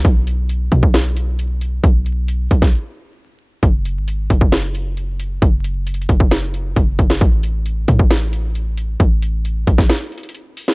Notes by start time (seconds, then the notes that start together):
0.05 B1, kick, closed hi-hat
0.27 closed hi-hat
0.49 closed hi-hat
0.72 B2, kick, closed hi-hat
0.83 B1, kick
0.94 snare, closed hi-hat
1.17 closed hi-hat
1.39 closed hi-hat
1.61 closed hi-hat
1.84 B1, kick, closed hi-hat
2.06 closed hi-hat
2.28 closed hi-hat
2.51 B1, kick, closed hi-hat
2.62 B1, kick, snare
3.63 F#1, kick, closed hi-hat
3.85 closed hi-hat
3.96 G#1
4.08 closed hi-hat
4.30 F#1, kick, closed hi-hat
4.41 F#1, kick
4.52 snare, closed hi-hat
4.75 closed hi-hat
4.97 closed hi-hat
5.20 closed hi-hat
5.42 F#1, kick, closed hi-hat
5.64 closed hi-hat
5.87 closed hi-hat
5.94 closed hi-hat
6.02 closed hi-hat
6.09 F#1, kick, closed hi-hat
6.20 F#1, kick
6.31 snare, closed hi-hat
6.54 closed hi-hat
6.76 F#1, kick, closed hi-hat
6.99 F#1, kick, closed hi-hat
7.10 snare
7.21 A1, kick, closed hi-hat
7.43 closed hi-hat
7.66 closed hi-hat
7.88 A2, kick, closed hi-hat
7.99 A1, kick
8.11 snare, closed hi-hat
8.33 closed hi-hat
8.55 closed hi-hat
8.78 closed hi-hat
9.00 A1, kick, closed hi-hat
9.23 closed hi-hat
9.45 closed hi-hat
9.67 A1, kick, closed hi-hat
9.78 A1, kick, snare
9.90 snare, closed hi-hat
10.12 closed hi-hat
10.18 closed hi-hat
10.23 closed hi-hat
10.29 closed hi-hat
10.35 closed hi-hat
10.57 open hi-hat
10.68 snare